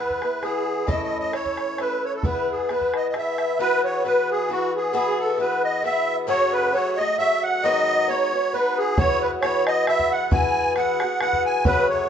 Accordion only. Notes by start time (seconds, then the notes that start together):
Already playing: B4
0.43 G#4
0.88 D#5
1.03 D#5
1.19 D#5
1.34 C#5
1.80 B4
2.05 C#5
2.15 A4
2.27 B4
2.51 G#4
2.71 B4
2.96 D#5
3.09 D#5
3.18 E5
3.60 B4
3.85 C#5
4.06 B4
4.31 G#4
4.51 F#4
4.76 G#4
4.95 G#4
5.19 A4
5.41 B4
5.64 D#5
5.85 E5
6.29 C#5
6.53 B4
6.74 C#5
6.97 D#5
7.19 E5
7.43 F#5
7.64 D#5
8.09 C#5
8.53 B4
8.78 G#4
8.98 C#5
9.22 B4
9.42 C#5
9.67 D#5
9.88 E5
10.12 F#5
10.33 G#5
10.77 F#5
11.21 F#5
11.46 G#5
11.66 B4
11.90 C#5